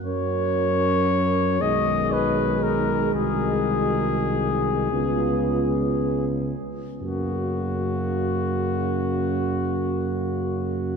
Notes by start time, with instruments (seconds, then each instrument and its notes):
0.04 tuba F#2, trombone F#3, euphonium C#4, french horn section A#4, flugelhorn C#5
1.61 tuba B1, trombone D#3, euphonium G#3, french horn section G#4, flugelhorn D#5
2.13 flugelhorn B4
2.63 flugelhorn A#4
3.14 tuba C2, french horn section F#4, flugelhorn G#4
4.91 tuba C#2, trombone C#3, euphonium B3, french horn section F4
7.00 tuba F#2, trombone C#3, euphonium A#3, french horn section F#4, flugelhorn F#4